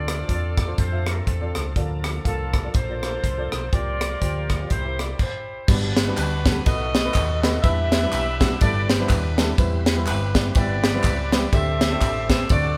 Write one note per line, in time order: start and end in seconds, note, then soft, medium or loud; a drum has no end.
0.00 0.22 D2 medium
0.00 0.53 D3 medium
0.00 0.12 C4 medium
0.00 1.73 C4 medium
0.00 1.72 D4 medium
0.00 0.12 F4 medium
0.00 0.75 F4 medium
0.00 1.73 F4 medium
0.00 0.12 A4 medium
0.00 0.75 A4 medium
0.00 1.76 A4 medium
0.00 0.12 D5 medium
0.00 0.56 D5 medium
0.08 cross-stick loud
0.08 closed hi-hat medium
0.28 0.71 E2 medium
0.28 0.54 C4 medium
0.28 0.54 F4 medium
0.28 0.54 A4 medium
0.28 0.54 D5 medium
0.28 kick medium
0.28 closed hi-hat medium
0.57 0.77 D5 medium
0.57 kick medium
0.57 cross-stick loud
0.57 closed hi-hat medium
0.67 0.80 C4 medium
0.67 0.80 F4 medium
0.67 0.80 A4 medium
0.67 0.81 C5 medium
0.78 1.20 F2 medium
0.78 1.26 F4 medium
0.78 1.26 A4 medium
0.78 1.07 C5 medium
0.78 kick medium
0.78 closed hi-hat medium
0.92 1.20 C4 medium
0.92 1.21 F4 medium
0.92 1.20 A4 medium
0.92 1.20 E5 medium
1.06 1.27 A#4 medium
1.06 cross-stick loud
1.06 closed hi-hat medium
1.27 1.51 E2 medium
1.27 1.73 C4 soft
1.27 1.73 F4 soft
1.27 1.66 A4 medium
1.27 kick medium
1.27 closed hi-hat medium
1.41 1.63 C4 medium
1.41 1.63 F4 medium
1.41 1.63 A4 medium
1.41 1.63 D5 medium
1.55 1.73 C#2 medium
1.55 cross-stick medium
1.55 closed hi-hat medium
1.76 2.18 D2 loud
1.76 2.50 D3 medium
1.76 3.69 F3 medium
1.76 2.08 A#3 medium
1.76 3.69 A#3 medium
1.76 3.69 D4 medium
1.76 2.08 F4 medium
1.76 2.08 A4 medium
1.76 3.69 A4 medium
1.76 2.08 D5 medium
1.76 kick medium
1.76 closed hi-hat medium
2.04 cross-stick loud
2.04 closed hi-hat medium
2.24 2.67 C2 medium
2.24 2.50 A#3 medium
2.24 2.50 F4 medium
2.24 2.74 F4 medium
2.24 2.50 A4 medium
2.24 2.71 A4 medium
2.24 2.50 F5 medium
2.24 kick medium
2.24 closed hi-hat medium
2.54 kick medium
2.54 cross-stick medium
2.54 closed hi-hat medium
2.64 2.77 A#3 medium
2.64 2.77 F4 medium
2.64 2.77 A4 medium
2.64 2.77 D5 medium
2.74 3.16 A#1 medium
2.74 3.69 F4 medium
2.74 3.69 A4 medium
2.74 3.51 C5 medium
2.74 kick loud
2.74 closed hi-hat medium
2.89 3.17 A#3 medium
2.89 3.17 F4 medium
2.89 3.17 A4 medium
2.89 3.17 D5 medium
3.03 cross-stick medium
3.03 closed hi-hat medium
3.23 3.48 C2 medium
3.23 kick medium
3.23 closed hi-hat medium
3.38 3.60 A#3 medium
3.38 3.60 F4 medium
3.38 3.60 A4 medium
3.38 3.60 D5 medium
3.52 3.70 B1 medium
3.52 3.71 C5 medium
3.52 cross-stick medium
3.52 closed hi-hat medium
3.72 4.14 C2 medium
3.72 4.46 C3 medium
3.72 3.79 E3 soft
3.72 4.69 A#3 medium
3.72 4.05 A#3 medium
3.72 4.69 C4 medium
3.72 4.05 F4 medium
3.72 4.67 F4 medium
3.72 4.68 G4 medium
3.72 4.05 G4 medium
3.72 4.67 A#4 medium
3.72 4.05 C5 medium
3.72 4.51 D5 loud
3.72 kick loud
3.72 closed hi-hat medium
3.78 4.72 F3 medium
4.01 cross-stick loud
4.01 closed hi-hat medium
4.21 4.63 D2 medium
4.21 4.47 A#3 medium
4.21 4.47 F4 medium
4.21 4.47 G4 medium
4.21 4.47 C5 medium
4.21 kick medium
4.21 closed hi-hat medium
4.50 4.70 D5 medium
4.50 kick medium
4.50 cross-stick medium
4.50 closed hi-hat medium
4.60 4.71 A#3 medium
4.60 4.71 F4 medium
4.60 4.71 G4 medium
4.60 4.71 D5 medium
4.70 5.12 C2 medium
4.70 5.16 C3 medium
4.70 5.19 E3 medium
4.70 5.19 A#3 medium
4.70 5.19 C4 medium
4.70 5.20 E4 medium
4.70 5.19 G4 medium
4.70 5.20 G4 medium
4.70 4.99 C5 medium
4.70 kick medium
4.70 closed hi-hat medium
4.85 5.13 A#3 medium
4.85 5.13 E4 medium
4.85 5.13 G4 medium
4.85 5.13 C5 medium
4.99 5.19 D5 medium
4.99 cross-stick medium
4.99 closed hi-hat medium
5.19 5.66 E4 soft
5.19 5.66 G4 soft
5.19 5.69 C5 medium
5.19 kick medium
5.19 crash medium
5.67 6.10 G1 loud
5.67 6.41 G2 medium
5.67 6.63 G3 medium
5.67 5.93 G3 medium
5.67 6.63 B3 medium
5.67 5.93 B3 medium
5.67 6.63 D4 medium
5.67 5.93 D4 medium
5.67 6.64 F#4 medium
5.67 5.93 F#4 medium
5.67 6.63 B4 medium
5.67 5.93 B4 medium
5.67 kick loud
5.67 crash loud
5.67 tambourine medium
5.97 snare loud
5.97 ride medium
5.97 tambourine medium
6.07 6.28 G3 medium
6.07 6.28 B3 medium
6.07 6.28 D4 medium
6.07 6.28 F#4 medium
6.07 6.28 B4 medium
6.17 6.59 D2 loud
6.17 6.63 D4 medium
6.17 6.63 F#4 medium
6.17 6.63 B4 medium
6.17 clap medium
6.17 ride medium
6.17 tambourine medium
6.45 6.58 G3 medium
6.45 6.58 B3 medium
6.45 6.58 D4 medium
6.45 6.58 F#4 medium
6.45 6.58 A4 medium
6.45 kick loud
6.45 snare loud
6.45 ride medium
6.45 tambourine medium
6.66 7.08 B1 loud
6.66 7.39 B2 medium
6.66 7.61 A3 medium
6.66 6.91 A3 medium
6.66 6.91 B3 medium
6.66 7.62 B3 medium
6.66 7.62 D#4 medium
6.66 6.91 D#4 medium
6.66 6.91 F#4 medium
6.66 7.62 F#4 medium
6.66 7.60 F#4 medium
6.66 7.60 A4 medium
6.66 7.61 B4 medium
6.66 6.91 B4 medium
6.66 7.40 D#5 loud
6.66 kick loud
6.66 ride medium
6.66 tambourine medium
6.94 snare loud
6.94 ride medium
6.94 tambourine medium
7.05 7.26 A3 medium
7.05 7.26 B3 medium
7.05 7.26 D#4 medium
7.05 7.26 F#4 medium
7.05 7.26 B4 medium
7.14 7.56 D#2 medium
7.14 kick loud
7.14 clap loud
7.14 ride medium
7.14 tambourine loud
7.41 7.55 A3 medium
7.41 7.55 B3 medium
7.41 7.55 D#4 medium
7.41 7.55 F#4 medium
7.41 7.55 B4 loud
7.41 7.61 D#5 loud
7.41 snare loud
7.41 ride medium
7.41 tambourine medium
7.62 8.05 E2 loud
7.62 8.36 E3 medium
7.62 7.88 G3 medium
7.62 9.54 G3 medium
7.62 7.88 B3 medium
7.62 9.55 B3 medium
7.62 7.88 D4 medium
7.62 9.55 D4 medium
7.62 7.89 E4 medium
7.62 9.54 E4 medium
7.62 8.57 G4 medium
7.62 7.71 A4 medium
7.62 7.89 B4 medium
7.62 8.57 B4 medium
7.62 8.38 E5 loud
7.62 kick loud
7.62 ride medium
7.62 tambourine medium
7.70 9.56 B4 medium
7.92 snare loud
7.92 ride medium
7.92 tambourine medium
8.02 8.23 G3 medium
8.02 8.23 B3 medium
8.02 8.23 D4 medium
8.02 8.23 E4 medium
8.02 8.23 B4 medium
8.12 8.54 B1 loud
8.12 clap medium
8.12 ride medium
8.12 tambourine medium
8.39 8.52 G3 medium
8.39 8.52 B3 medium
8.39 8.53 D4 medium
8.39 8.53 E4 medium
8.39 8.53 F#4 medium
8.39 8.59 E5 loud
8.39 kick loud
8.39 snare loud
8.39 ride soft
8.39 tambourine medium
8.60 9.02 G1 medium
8.60 8.86 G3 medium
8.60 8.86 B3 medium
8.60 8.86 D4 medium
8.60 8.86 E4 medium
8.60 9.08 G4 medium
8.60 8.86 A4 medium
8.60 9.07 B4 medium
8.60 8.87 D5 loud
8.60 kick loud
8.60 ride medium
8.60 tambourine medium
8.89 9.09 C5 loud
8.89 snare loud
8.89 ride medium
8.89 tambourine medium
8.99 9.20 G3 medium
8.99 9.20 B3 medium
8.99 9.20 D4 medium
8.99 9.20 E4 medium
8.99 9.21 B4 medium
9.08 9.51 D#2 medium
9.08 9.55 D4 medium
9.08 9.55 G4 medium
9.08 9.47 B4 medium
9.08 kick loud
9.08 clap loud
9.08 ride medium
9.08 tambourine loud
9.38 9.50 G3 medium
9.38 9.50 B3 medium
9.38 9.50 D4 medium
9.38 9.50 E4 medium
9.38 9.50 A4 medium
9.38 snare loud
9.38 ride medium
9.38 tambourine medium
9.57 10.08 E2 loud
9.57 10.31 E3 medium
9.57 9.83 G3 medium
9.57 11.49 G3 medium
9.57 11.49 B3 medium
9.57 9.83 B3 medium
9.57 11.48 C4 medium
9.57 9.83 C4 medium
9.57 9.83 E4 medium
9.57 11.49 E4 medium
9.57 11.48 B4 medium
9.57 9.83 B4 medium
9.57 kick loud
9.57 ride medium
9.57 tambourine medium
9.86 snare loud
9.86 ride medium
9.86 tambourine medium
9.96 10.17 G3 medium
9.96 10.17 B3 medium
9.96 10.17 C4 medium
9.96 10.17 E4 medium
9.96 10.17 B4 medium
10.06 10.48 G1 loud
10.06 10.56 G4 medium
10.06 10.52 B4 medium
10.06 clap medium
10.06 ride medium
10.06 tambourine medium
10.35 10.47 G3 medium
10.35 10.47 B3 medium
10.35 10.47 C4 medium
10.35 10.47 E4 medium
10.35 10.47 D5 medium
10.35 kick loud
10.35 snare loud
10.35 ride medium
10.35 tambourine medium
10.55 10.97 G1 loud
10.55 10.80 G3 medium
10.55 10.81 B3 medium
10.55 10.81 C4 medium
10.55 10.81 E4 medium
10.55 10.81 G4 medium
10.55 11.49 G4 medium
10.55 11.49 B4 medium
10.55 11.31 D5 loud
10.55 kick loud
10.55 ride medium
10.55 tambourine medium
10.84 snare loud
10.84 ride medium
10.84 tambourine medium
10.94 11.15 G3 medium
10.94 11.15 B3 medium
10.94 11.15 C4 medium
10.94 11.15 E4 medium
10.94 11.15 B4 medium
11.04 11.45 C#2 medium
11.04 kick medium
11.04 clap loud
11.04 ride medium
11.04 tambourine loud
11.32 11.44 G3 medium
11.32 11.44 B3 medium
11.32 11.44 C4 medium
11.32 11.44 E4 medium
11.32 11.44 B4 medium
11.32 11.51 D5 medium
11.32 snare loud
11.32 ride medium
11.32 tambourine medium
11.52 11.94 D2 loud
11.52 12.25 D3 medium
11.52 11.59 F#3 medium
11.52 12.48 A3 medium
11.52 11.78 A3 medium
11.52 11.78 C4 medium
11.52 12.48 C4 medium
11.52 12.48 D4 medium
11.52 11.78 D4 medium
11.52 11.78 G4 medium
11.52 12.47 G4 medium
11.52 12.48 A4 medium
11.52 11.78 C5 medium
11.52 12.47 C5 medium
11.52 12.29 E5 loud
11.52 kick loud
11.52 ride medium
11.52 tambourine medium
11.59 12.51 G3 medium
11.81 snare loud
11.81 ride medium
11.81 tambourine medium
11.90 12.12 A3 medium
11.90 12.12 C4 medium
11.90 12.12 D4 medium
11.90 12.12 G4 medium
11.90 12.12 A4 medium
12.01 12.42 A1 medium
12.01 kick medium
12.01 clap medium
12.01 ride medium
12.01 tambourine medium
12.29 12.41 A3 medium
12.29 12.41 C4 medium
12.29 12.41 D4 medium
12.29 12.42 G4 medium
12.29 12.41 B4 medium
12.29 12.49 E5 loud
12.29 kick medium
12.29 snare loud
12.29 ride medium
12.29 tambourine medium
12.49 12.74 D2 loud
12.49 12.78 D3 medium
12.49 12.78 F#3 medium
12.49 12.78 A3 medium
12.49 12.75 A3 medium
12.49 12.75 C4 medium
12.49 12.78 C4 medium
12.49 12.78 D4 medium
12.49 12.75 D4 medium
12.49 12.75 F#4 medium
12.49 12.78 F#4 medium
12.49 12.78 A4 medium
12.49 12.75 C5 medium
12.49 12.76 D5 loud
12.49 kick loud
12.49 ride medium
12.49 tambourine medium